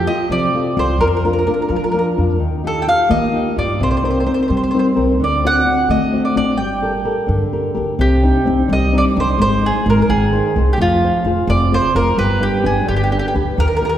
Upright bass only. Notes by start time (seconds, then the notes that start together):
0.30 F3
0.77 C2
0.99 F2
1.70 F3
2.18 F2
2.41 D#2
3.10 D#3
3.58 G2
3.80 C2
4.50 C3
4.97 C2
5.20 D2
5.89 D3
6.36 A1
6.58 G1
7.29 G2
7.77 D2
7.99 C2
8.47 C2
8.69 C2
9.17 C2
9.39 G#1
9.86 G#1
10.09 G#1
10.56 C2
10.78 F1
11.24 F1
11.47 F1
11.95 F1
12.18 G1
12.65 G1
12.88 G1
13.35 D2
13.58 D#2